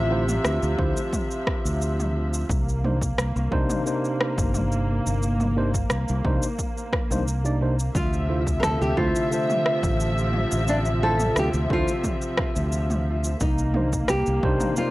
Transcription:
Already playing: fingered electric bass A1, string section C3 F3 E5
0.10 tine electric piano D3 A3 E4 F4 C5
0.28 mid tom, shaker
0.45 fingered electric bass D2, cross-stick, shaker
0.63 fingered electric bass D2, shaker
0.78 fingered electric bass D2, tine electric piano D3 A3 E4 F4 C5, kick
0.97 shaker
1.13 kick, mid tom, shaker
1.31 shaker
1.47 kick, cross-stick
1.65 fingered electric bass D2, shaker
1.82 shaker
2.00 mid tom, shaker
2.34 shaker
2.49 fingered electric bass C2, string section A#3, kick, shaker
2.69 shaker
2.84 tine electric piano C3 A#3 D4 D#4 C5, mid tom
3.02 kick, shaker
3.18 fingered electric bass C2, cross-stick, shaker
3.36 fingered electric bass C2, shaker
3.51 fingered electric bass C2, tine electric piano C3 A#3 D4 D#4 C5, kick
3.70 mid tom, shaker
3.84 tine electric piano C3 A#3 D4 D#4 C5, shaker
4.05 shaker
4.21 cross-stick
4.38 fingered electric bass G1, kick, shaker
4.54 mid tom, shaker
4.72 shaker
5.06 fingered electric bass G1, shaker
5.22 shaker
5.40 mid tom, shaker
5.56 tine electric piano C3 A#3 D4 D#4 C5
5.74 kick, shaker
5.90 fingered electric bass C2, cross-stick, shaker
6.08 fingered electric bass C2, shaker
6.25 fingered electric bass C2, tine electric piano C3 A#3 D4 D#4 C5, kick, mid tom
6.42 shaker
6.59 kick, shaker
6.78 shaker
6.93 kick, cross-stick
7.11 fingered electric bass C2, tine electric piano C3 A#3 D4 D#4 C5, mid tom, shaker
7.28 shaker
7.44 tine electric piano C3 A#3 D4 D#4 D5, shaker
7.61 tine electric piano C3 A#3 D4 D#4 C5
7.79 shaker
7.94 fingered electric bass D2, string section C3 F3 E5, nylon-string guitar F4, kick, shaker
8.13 shaker
8.28 tine electric piano D3 A3 E4 F4 C5
8.47 kick, shaker
8.60 fingered electric bass D2, nylon-string guitar A4 A#4, cross-stick, mid tom, shaker
8.82 fingered electric bass D2, nylon-string guitar G4, shaker
8.97 fingered electric bass D2, tine electric piano D3 A3 E4 F4 C5, nylon-string guitar F4, kick
9.15 shaker
9.31 tine electric piano D3 A3 F4 C5 E5, shaker
9.50 mid tom, shaker
9.66 cross-stick
9.83 fingered electric bass A1, kick, shaker
10.00 shaker
10.18 shaker
10.33 mid tom
10.52 fingered electric bass A1, shaker
10.68 nylon-string guitar D4, shaker
10.85 shaker
11.02 tine electric piano D3 A3 E4 F4 C5, nylon-string guitar A4
11.19 mid tom, shaker
11.36 fingered electric bass D2, nylon-string guitar G4, cross-stick, shaker
11.54 fingered electric bass D2, shaker
11.70 fingered electric bass D2, tine electric piano D3 A3 E4 F4 C5, nylon-string guitar F4, kick
11.88 shaker
12.04 kick, mid tom, shaker
12.22 shaker
12.37 kick, cross-stick
12.56 fingered electric bass D2, shaker
12.72 shaker
12.90 mid tom, shaker
13.24 shaker
13.40 fingered electric bass C2, string section A#3, nylon-string guitar D#4, kick, shaker
13.59 shaker
13.74 tine electric piano C3 A#3 D4 D#4 C5, mid tom
13.93 kick, shaker
14.08 fingered electric bass C2, nylon-string guitar G4, cross-stick, shaker
14.26 fingered electric bass C2, shaker
14.43 fingered electric bass C2, tine electric piano C3 A#3 D4 D#4 C5, kick
14.60 mid tom, shaker
14.76 tine electric piano C3 A#3 D#4 C5 D5, nylon-string guitar F4, shaker

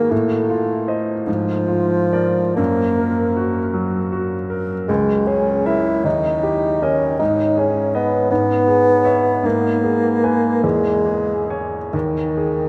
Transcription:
Already playing: grand piano D#3 F#4 G#4, bassoon A#3
0.11 grand piano A2, bassoon A3
0.50 grand piano F4
0.88 grand piano C5 D#5
1.27 grand piano G#2, bassoon F3
1.68 grand piano F4
2.13 grand piano A#4 D5
2.57 grand piano F#2, bassoon A#3
2.98 grand piano A#4
3.36 grand piano F#4
3.74 grand piano F#3
4.12 grand piano F#4
4.50 grand piano A#4
4.88 grand piano C#2, bassoon G#3
5.27 bassoon C#4, grand piano G#4
5.65 bassoon E4, grand piano A#4 E5
6.04 grand piano D#2, bassoon D#4
6.43 grand piano G4
6.82 bassoon C#4, grand piano A#4 D#5
7.19 grand piano G#2, bassoon D#4
7.57 bassoon C#4, grand piano G#4
7.95 bassoon B3, grand piano B4 D#5
8.31 grand piano G#2, bassoon B3
8.68 grand piano G#4
9.04 grand piano C#5 E5
9.43 grand piano G#2, bassoon A#3
9.84 grand piano G#4
10.24 grand piano B4 G#5
10.63 grand piano E2, bassoon G#3
11.06 grand piano G#4
11.50 grand piano C#5 G#5
11.92 grand piano D#2, bassoon D#3
12.37 grand piano G#4

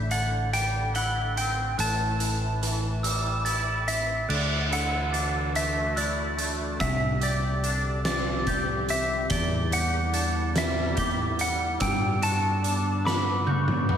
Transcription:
Already playing: fingered electric bass A1, clean electric guitar A2, glockenspiel G6
0.11 clean electric guitar D3, electric slide guitar F#5, glockenspiel A6, closed hi-hat
0.53 clean electric guitar G3, electric slide guitar G5, closed hi-hat
0.94 clean electric guitar E4, electric slide guitar F#5, glockenspiel G7, closed hi-hat
1.36 clean electric guitar C4, electric slide guitar G5, closed hi-hat
1.78 fingered electric bass A1, clean electric guitar A2, electric slide guitar A5, glockenspiel F#6, closed hi-hat
2.19 clean electric guitar E3, closed hi-hat
2.62 clean electric guitar E3, closed hi-hat
3.03 clean electric guitar G3, glockenspiel E6, closed hi-hat
3.45 clean electric guitar E4, glockenspiel A6, closed hi-hat
3.87 clean electric guitar C4, electric slide guitar E5, closed hi-hat
4.28 fingered electric bass D2, clean electric guitar D3, ambient pad E3 A3 D4 F#4, electric slide guitar D5, glockenspiel F#6, crash
4.70 clean electric guitar E4, electric slide guitar F#5, closed hi-hat
5.12 clean electric guitar D4, glockenspiel A6, closed hi-hat
5.55 clean electric guitar A3, electric slide guitar E5, closed hi-hat
5.95 clean electric guitar E4, electric slide guitar D5, glockenspiel F#6, closed hi-hat
6.37 clean electric guitar A3, closed hi-hat
6.79 fingered electric bass C2, clean electric guitar C3, ambient pad D3 G3 C4 G4, electric slide guitar E5, glockenspiel E6, kick, closed hi-hat
7.21 clean electric guitar G4, electric slide guitar D5, closed hi-hat
7.63 clean electric guitar D4, closed hi-hat
8.05 clean electric guitar C4, electric slide guitar D5, glockenspiel D6, snare, closed hi-hat
8.46 clean electric guitar G4, glockenspiel G6, kick, closed hi-hat
8.89 clean electric guitar C4, electric slide guitar E5, closed hi-hat
9.30 fingered electric bass E2, clean electric guitar E2, ambient pad D3 B3 E4, electric slide guitar D5, glockenspiel G7, kick, closed hi-hat
9.72 clean electric guitar G4, electric slide guitar F#5, closed hi-hat
10.13 clean electric guitar D4, glockenspiel A6, closed hi-hat
10.55 clean electric guitar G3, electric slide guitar E5, snare, closed hi-hat
10.96 clean electric guitar G4, glockenspiel G7, kick, closed hi-hat
11.38 clean electric guitar G3, electric slide guitar F#5, closed hi-hat
11.80 fingered electric bass G2, ambient pad D3 G3 B3 D4, clean electric guitar G3, electric slide guitar G5, glockenspiel E6, kick, closed hi-hat
12.22 clean electric guitar F#4, electric slide guitar A5, closed hi-hat
12.62 clean electric guitar D4, closed hi-hat
13.04 clean electric guitar B3, electric slide guitar B5, glockenspiel D6, snare
13.46 clean electric guitar F#4, glockenspiel G6, high tom
13.68 mid tom
13.89 clean electric guitar B3, mid tom

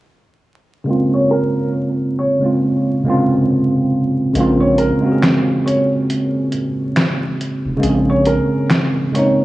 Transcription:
0.84 tine electric piano C#3 G#3 A#3
0.89 tine electric piano C4 F4
1.14 felt piano C#5
1.31 felt piano A#4
2.19 felt piano C#5
2.39 tine electric piano C#3 G#3 A#3
2.44 tine electric piano C4 F4
3.03 tine electric piano C3 G#3 A#3
3.08 tine electric piano C#3 C4 F4
4.33 sub bass A#1, tine electric piano C#3 G#3 A#3, closed hi-hat
4.38 tine electric piano C4 F4
4.60 felt piano C#5
4.78 felt piano A#4, closed hi-hat
4.99 tine electric piano C#3 G#3 A#3
5.04 tine electric piano C4 F#4
5.12 tine electric piano G#4
5.22 finger snap, snare, closed hi-hat
5.66 felt piano C#5, closed hi-hat
6.10 closed hi-hat
6.52 closed hi-hat
6.96 finger snap, snare, closed hi-hat
7.41 closed hi-hat
7.65 sub bass F1
7.77 tine electric piano C#3 G#3 A#3
7.82 sub bass A#1, tine electric piano C4 G#4, closed hi-hat
8.10 felt piano C#5
8.25 felt piano A#4, closed hi-hat
8.70 finger snap, snare, closed hi-hat
9.12 tine electric piano C#3 G#3 A#3, felt piano C#5, closed hi-hat
9.17 tine electric piano C4 D#4

